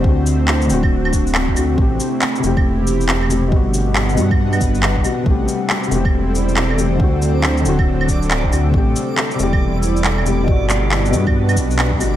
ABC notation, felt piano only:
X:1
M:4/4
L:1/8
Q:"Swing 16ths" 1/4=138
K:Ador
V:1 name="Felt piano"
[D,CF]3 [D,CF]4 [D,CF] | [C,A,G]3 [C,A,G]4 [C,A,G] | [B,,G,F]3 [B,,G,F]4 [B,,G,F] | [C,A,G]3 [C,A,G]4 [C,A,G] |
[D,CF]3 [D,CF]4 [D,CF] | [C,A,G]3 [C,A,G]4 [C,A,G] | [B,,G,F]3 [B,,G,F]4 [B,,G,F] |]